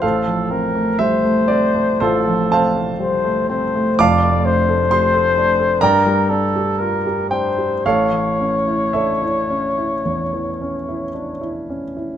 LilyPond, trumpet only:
\new Staff \with { instrumentName = "Trumpet" } { \time 4/4 \key c \mixolydian \tempo 4 = 60 a'8 bes'8 c''4 a'8. r16 c''8 c''8 | \key a \phrygian d''8 c''4. bes'8 a'8 bes'8 c''8 | cis''2.~ cis''8 r8 | }